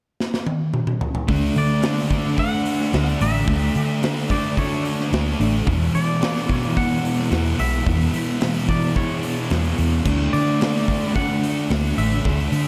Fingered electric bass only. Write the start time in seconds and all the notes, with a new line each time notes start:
1.28 D2
1.56 D3
2.94 D2
3.21 A1
3.48 D2
3.76 D3
5.13 D2
5.40 A1
5.67 E2
5.95 E3
7.32 E2
7.59 B1
7.87 E2
8.14 E3
9.51 E2
9.79 E2
10.06 D2
10.33 D3
11.70 D2
11.98 A1
12.25 D2
12.52 D3